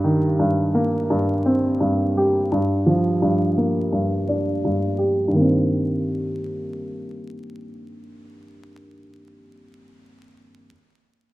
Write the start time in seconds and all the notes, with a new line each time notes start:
Already playing: G2
0.04 D#3
0.39 G2
0.74 A#3
1.10 G2
1.46 C4
1.80 G2
2.17 G4
2.52 G2
2.86 F3
3.22 G2
3.58 A#3
3.93 G2
4.29 D4
4.65 G2
4.98 G4
5.28 G2
5.32 D#3 A#3
5.40 C4